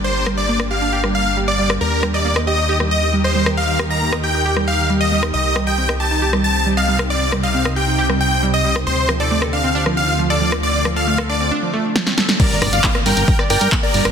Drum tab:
CC |----------------|----------------|----------------|----------------|
HH |----------------|----------------|----------------|----------------|
CP |----------------|----------------|----------------|----------------|
SD |--r--r---r-----r|--r--r---r-----r|--r--r---r-----r|--r--r---r-----r|
BD |----------------|----------------|----------------|----------------|

CC |----------------|----------------|----------------|x---------------|
HH |----------------|----------------|----------------|x-oxx-oxx-oxx-ox|
CP |----------------|----------------|----------------|----x-------x---|
SD |--r--r---r-----r|--r--r---r-----r|--r--r------oooo|--r--r---r-----r|
BD |----------------|----------------|----------------|o---o---o---o---|